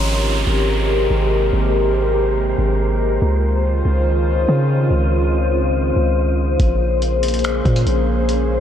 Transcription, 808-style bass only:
0.00 0.45 G#1 loud
0.47 1.08 G#1 loud
1.11 1.51 G#1 loud
1.53 2.54 G#1 loud
2.58 3.19 G#1 loud
3.22 3.83 C#2 loud
3.85 4.46 C#2 loud
4.48 4.89 C#3 loud
4.91 5.92 C#2 loud
5.96 6.57 C#2 loud
6.60 7.61 A#1 loud
7.65 7.86 A#2 loud
7.87 8.60 A#1 loud

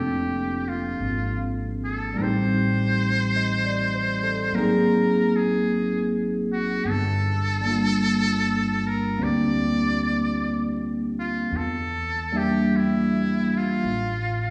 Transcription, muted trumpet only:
0.00 0.70 G4 medium
0.68 1.47 F4 medium
1.84 2.19 A4 medium
2.17 2.24 A#4 medium
2.22 4.57 C5 medium
4.55 5.38 A#4 medium
5.36 6.14 G#4 medium
6.53 6.91 F#4 medium
6.89 8.88 A4 loud
8.87 9.25 A#4 medium
9.23 10.81 D5 medium
11.19 11.58 F4 medium
11.56 12.39 A4 medium
12.37 12.78 G4 medium
12.76 13.59 E4 medium
13.57 14.50 F4 medium

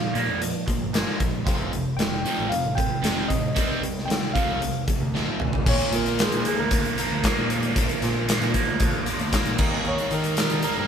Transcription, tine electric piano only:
0.00 0.15 F5 medium
0.14 0.63 D5 medium
1.97 2.52 G5 loud
2.49 2.77 F5 medium
2.75 3.31 G5 loud
3.28 4.10 D#5 medium
4.05 4.32 G5 medium
4.33 4.83 F5 medium
5.69 5.93 C#5 medium
5.96 6.20 A#4 medium
6.21 6.45 G#4 medium
6.48 6.59 G#4 medium
6.55 6.58 A4 medium
6.60 6.97 A#4 loud
6.99 8.51 A#4 medium
9.88 10.12 C#5 medium
10.14 10.38 A#4 medium
10.40 10.63 A#4 medium
10.64 10.76 A#4 medium
10.75 10.78 A4 medium
10.80 10.87 A#4 medium

